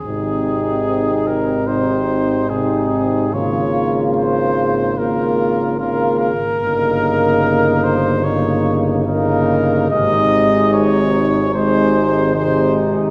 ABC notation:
X:1
M:4/4
L:1/8
Q:1/4=73
K:Ab
V:1 name="Trumpet"
A3 B c2 A2 | d2 c2 B2 B B- | B3 c d z B2 | e2 d2 c2 c z |]
V:2 name="Flugelhorn"
E4 E2 E2 | F4 F2 F z | E4 E2 E2 | E4 E2 E2 |]
V:3 name="French horn"
C4 C2 C2 | B,4 B,2 B, z | B,4 B,2 B,2 | A,4 A,2 A,2 |]
V:4 name="Trombone" clef=bass
C,4 C,2 C,2 | D,4 D,2 D, z | D,4 D,2 D,2 | C,4 C,2 C,2 |]
V:5 name="Tuba" clef=bass
A,,,8 | A,,,6- A,,, z | G,,,8 | A,,,8 |]